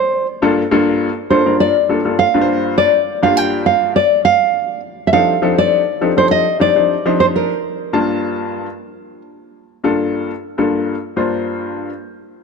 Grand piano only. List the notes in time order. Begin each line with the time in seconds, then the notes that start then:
0.42 G2 A#3 D4 F4 A4
0.71 G2 A#3 D4 F4 A4
1.30 G2 A#3 D4 F4 A4
1.45 G2 A#3 D4 F4 A#4
1.89 G2 A#3 D4 F4 A4
2.05 G2 A#3 D4 F4 A4
2.34 G2 A#3 D4 F4 B4
2.41 C5
3.22 G2 A#3 D4 F4 G4
5.13 F3 C4 D4 D#4 G4 A4
5.42 F3 C4 D4 D#4 G4 A4
6.01 F3 C4 D4 D#4 G4 A4
6.17 F3 C4 D4 D#4 G4 A4
6.60 F3 C4 D4 D#4 G4 C5
6.75 F3 C4 D4 D#4 G4 C5
7.05 F3 C4 D4 D#4 G4 C5
7.93 G2 A#3 D4 F4 A5
9.84 G2 A#3 D4 F4 A4
10.58 G2 A#3 D4 F4 A4
11.16 G2 A#3 D4 F4 C5